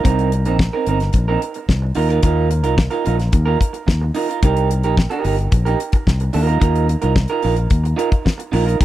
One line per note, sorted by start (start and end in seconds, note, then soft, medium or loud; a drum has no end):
0.04 0.46 C2 loud
0.04 0.29 C4 medium
0.04 0.30 D#4 medium
0.04 0.30 A#4 medium
0.04 kick loud
0.04 closed hi-hat medium
0.19 closed hi-hat soft
0.32 muted clean electric guitar stroke soft
0.32 closed hi-hat medium
0.45 0.68 A#1 medium
0.45 0.57 C4 medium
0.45 0.56 D#4 medium
0.45 0.56 A#4 soft
0.45 closed hi-hat soft
0.59 muted clean electric guitar stroke soft
0.59 kick loud
0.59 snare loud
0.73 0.86 C4 medium
0.73 0.86 D#4 medium
0.73 0.86 A#4 medium
0.86 1.09 G1 medium
0.86 0.97 C4 medium
0.86 0.97 D#4 medium
0.86 0.98 A#4 medium
0.86 closed hi-hat medium
1.00 muted clean electric guitar stroke medium
1.00 snare soft
1.00 closed hi-hat soft
1.13 1.36 A#1 medium
1.13 muted clean electric guitar stroke soft
1.13 kick loud
1.13 closed hi-hat medium
1.28 1.40 C4 medium
1.28 1.40 D#4 medium
1.28 1.41 A#4 medium
1.41 muted clean electric guitar stroke soft
1.41 closed hi-hat medium
1.54 muted clean electric guitar stroke soft
1.54 closed hi-hat soft
1.69 1.91 C2 medium
1.69 muted clean electric guitar stroke soft
1.69 kick medium
1.69 snare medium
1.82 muted clean electric guitar stroke soft
1.95 2.18 D#2 medium
1.95 2.09 D#4 medium
1.95 2.09 F4 medium
1.95 2.08 A#4 medium
1.95 open hi-hat medium
2.09 2.21 D#4 medium
2.09 2.20 F4 soft
2.09 2.20 A#4 medium
2.09 closed hi-hat soft
2.22 2.65 D#2 medium
2.22 2.48 D#4 medium
2.22 2.49 F4 medium
2.22 2.49 A#4 medium
2.22 kick loud
2.22 closed hi-hat medium
2.50 muted clean electric guitar stroke soft
2.50 closed hi-hat medium
2.64 2.87 C2 medium
2.64 2.75 D#4 medium
2.64 2.74 F4 medium
2.64 2.74 A#4 medium
2.64 closed hi-hat soft
2.78 kick loud
2.78 snare loud
2.90 3.04 D#4 medium
2.90 3.05 F4 medium
2.90 3.04 A#4 medium
2.90 closed hi-hat soft
3.05 3.28 A#1 medium
3.05 3.15 D#4 medium
3.05 3.16 F4 medium
3.05 3.16 A#4 medium
3.05 closed hi-hat medium
3.18 muted clean electric guitar stroke medium
3.18 snare soft
3.18 closed hi-hat soft
3.32 3.55 D#2 medium
3.32 muted clean electric guitar stroke soft
3.32 kick loud
3.32 closed hi-hat medium
3.46 3.58 D#4 medium
3.46 3.58 F4 medium
3.46 3.59 A#4 medium
3.59 muted clean electric guitar stroke soft
3.59 kick medium
3.59 closed hi-hat medium
3.73 muted clean electric guitar stroke soft
3.73 closed hi-hat soft
3.87 4.10 D#2 medium
3.87 muted clean electric guitar stroke soft
3.87 kick medium
3.87 snare medium
4.01 muted clean electric guitar stroke soft
4.15 4.28 D#4 medium
4.15 4.28 F4 medium
4.15 4.27 A#4 medium
4.15 open hi-hat medium
4.28 4.40 D#4 soft
4.28 4.39 F4 soft
4.28 4.39 A#4 soft
4.28 closed hi-hat soft
4.43 4.84 C2 medium
4.43 4.68 D#4 medium
4.43 4.69 G4 medium
4.43 4.69 A#4 medium
4.43 kick loud
4.43 closed hi-hat medium
4.57 closed hi-hat soft
4.70 muted clean electric guitar stroke soft
4.70 closed hi-hat medium
4.83 5.06 A#1 medium
4.83 4.95 D#4 soft
4.83 4.94 G4 medium
4.83 4.94 A#4 medium
4.83 closed hi-hat soft
4.97 kick loud
4.97 snare loud
5.10 5.23 D#4 medium
5.10 5.24 G4 medium
5.10 5.24 A#4 medium
5.10 closed hi-hat soft
5.24 5.47 G1 medium
5.24 5.35 D#4 medium
5.24 5.35 G4 medium
5.24 5.35 A#4 medium
5.24 open hi-hat medium
5.38 muted clean electric guitar stroke soft
5.38 closed hi-hat soft
5.51 5.74 A#1 medium
5.51 muted clean electric guitar stroke soft
5.51 kick loud
5.51 closed hi-hat medium
5.65 5.79 D#4 medium
5.65 5.79 G4 medium
5.65 5.79 A#4 medium
5.65 closed hi-hat soft
5.80 muted clean electric guitar stroke soft
5.80 closed hi-hat medium
5.92 muted clean electric guitar stroke medium
5.92 kick loud
5.92 closed hi-hat soft
6.07 6.29 C2 medium
6.07 muted clean electric guitar stroke soft
6.07 kick medium
6.07 snare medium
6.20 muted clean electric guitar stroke soft
6.20 closed hi-hat soft
6.33 6.57 D#2 loud
6.33 6.47 D#4 medium
6.33 6.47 F4 medium
6.33 6.46 A#4 medium
6.33 open hi-hat medium
6.47 6.58 D#4 medium
6.47 6.58 F4 medium
6.47 6.58 A#4 medium
6.47 closed hi-hat soft
6.60 6.94 D#2 medium
6.60 6.86 D#4 medium
6.60 6.87 F4 medium
6.60 6.87 A#4 medium
6.60 kick loud
6.60 closed hi-hat medium
6.75 closed hi-hat soft
6.88 muted clean electric guitar stroke soft
6.88 closed hi-hat medium
7.02 7.25 C2 medium
7.02 7.13 D#4 soft
7.02 7.13 F4 medium
7.02 7.12 A#4 medium
7.02 closed hi-hat soft
7.16 muted clean electric guitar stroke soft
7.16 kick loud
7.16 snare loud
7.28 7.42 D#4 medium
7.28 7.42 F4 medium
7.28 7.43 A#4 medium
7.28 closed hi-hat soft
7.42 7.66 A#1 medium
7.42 7.53 D#4 medium
7.42 7.54 F4 medium
7.42 7.54 A#4 medium
7.42 open hi-hat medium
7.56 muted clean electric guitar stroke soft
7.56 closed hi-hat soft
7.70 7.93 D#2 medium
7.70 kick loud
7.70 closed hi-hat medium
7.84 muted clean electric guitar stroke soft
7.84 closed hi-hat soft
7.96 8.10 D#4 medium
7.96 8.10 F4 medium
7.96 8.10 A#4 medium
7.96 closed hi-hat medium
8.11 muted clean electric guitar stroke soft
8.11 kick loud
8.11 closed hi-hat soft
8.25 muted clean electric guitar stroke soft
8.25 kick medium
8.25 snare loud
8.38 muted clean electric guitar stroke soft
8.38 closed hi-hat soft
8.52 8.75 A#1 medium
8.52 8.66 D#4 medium
8.52 8.65 F4 medium
8.52 8.64 A#4 medium
8.52 open hi-hat medium
8.66 8.77 D#4 soft
8.66 8.77 F4 medium
8.66 8.76 A#4 medium
8.66 closed hi-hat soft
8.80 8.85 C2 medium
8.80 8.85 D#4 medium
8.80 8.85 G4 medium
8.80 kick loud
8.80 closed hi-hat medium